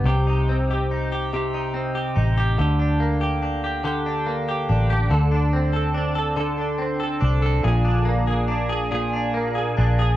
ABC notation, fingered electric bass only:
X:1
M:6/8
L:1/8
Q:3/8=47
K:Cdor
V:1 name="Fingered electric bass" clef=bass
C,,4- C,, A,,, | D,,4- D,, A,,, | D,,4- D,, C,, | B,,,4- B,,, B,,, |]